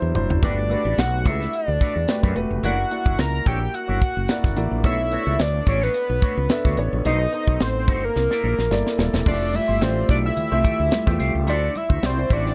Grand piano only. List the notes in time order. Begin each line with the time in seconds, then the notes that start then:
Already playing: F#3 D4 E4 C5
0.14 F#3 D4 E4 C5
0.42 A3 F#4 G4 B4
0.70 A3 F#4 G4 B4
2.08 A3 F#4 G4 B4
2.35 A3 F#4 G4 B4
2.63 A#3 E4 F#4 D5
2.91 A#3 E4 F#4 D5
4.29 A#3 E4 F#4 D5
4.56 A#3 E4 F#4 D5
4.84 B3 D4 A4 C#5
5.12 B3 D4 A4 C#5
6.50 B3 D4 A4 E5
6.77 B3 D4 A4 C#5
7.05 B3 D#4 A4 C5
7.33 B3 D#4 A4 C5
8.71 A#3 E4 A4 D5
8.98 A#3 E4 A4 D5
9.26 A3 F4 G4 E5
9.54 A3 F4 G4 E5
9.81 A3 F4 G4 D5
9.89 E5
10.51 A3 F4 G4 E5
11.07 A3 F4 G4 E5
12.02 C4 E4 F#4 D5
12.17 C4 E4 F#4 D5
12.45 C4 E4 F#4 D5